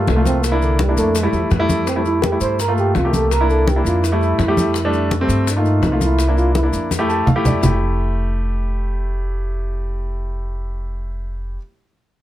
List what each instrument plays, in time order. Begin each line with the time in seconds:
0.07 upright bass C2, trombone A3, high bongo, low bongo, high conga, maracas
0.16 grand piano A3 A#3 F4
0.25 trombone C4, high conga, maracas
0.44 trombone A#3, high bongo, high conga, maracas
0.52 grand piano A#3 D4 E4
0.61 trombone D3, high bongo, high conga, maracas
0.79 trombone G3, high bongo, high conga, maracas
0.89 grand piano A#3 D4 E4
0.97 upright bass F2, trombone A3, high bongo, maracas
1.15 high bongo, high conga, maracas
1.23 grand piano G3 A3 E4
1.33 upright bass E2, high conga, maracas
1.51 upright bass F2, high bongo, low bongo, high conga, maracas
1.59 grand piano G3 A3 E4
1.69 high bongo, high conga, maracas
1.86 trombone C4, high bongo, high conga, maracas
1.96 grand piano G3 A3 E4
2.05 trombone E4, high conga, maracas
2.22 trombone G4, high bongo, high conga, maracas
2.32 grand piano G3 A3 E4
2.40 upright bass G2, trombone C5, maracas
2.59 trombone A#4, high bongo, high conga, maracas
2.68 grand piano A3 A#3 F4
2.77 trombone G4, high conga, maracas
2.95 upright bass C2, trombone F4, high bongo, low bongo, high conga, maracas
3.05 grand piano A3 A#3 G4
3.13 trombone A4, high conga, maracas
3.31 trombone A#4, high bongo, high conga, maracas
3.41 grand piano A#3 D4 E4
3.49 trombone A4, high bongo, high conga, maracas
3.67 trombone G4, high bongo, high conga, maracas
3.76 grand piano A#3 D4 E4
3.85 upright bass F2, trombone F4, high bongo, maracas
4.03 trombone E4, high bongo, high conga, maracas
4.12 grand piano G3 A3 E4
4.21 high conga, maracas
4.39 upright bass F2, high bongo, low bongo, high conga, maracas
4.48 grand piano G3 A3 G4
4.57 high bongo, high conga, maracas
4.74 high bongo, high conga, maracas
4.85 grand piano G3 A3 D4
4.93 high conga, maracas
5.11 high bongo, high conga, maracas
5.21 grand piano G3 A3 C4
5.28 upright bass G2, maracas
5.47 trombone D#4, high bongo, high conga, maracas
5.56 grand piano A3 A#3 F4
5.65 high conga, maracas
5.82 upright bass C2, high bongo, low bongo, high conga, maracas
5.92 grand piano A3 A#3 F4
6.01 trombone E4, high conga, maracas
6.19 high bongo, high conga, maracas
6.28 grand piano A#3 D4 E4
6.37 trombone F4, high bongo, high conga, maracas
6.55 trombone E4, high bongo, high conga, maracas
6.63 grand piano A#3 D4 E4
6.73 upright bass F2, high bongo, maracas
6.91 high bongo, high conga, maracas
6.99 grand piano A3 E4 G4
7.09 grand piano A5, high bongo, maracas
7.26 upright bass F2, grand piano F5, low conga, maracas
7.36 grand piano A3 E4 G4
7.44 grand piano D5, low bongo, low conga, maracas
7.61 upright bass F1, grand piano A3 E4, low bongo, low conga, maracas
7.65 grand piano G4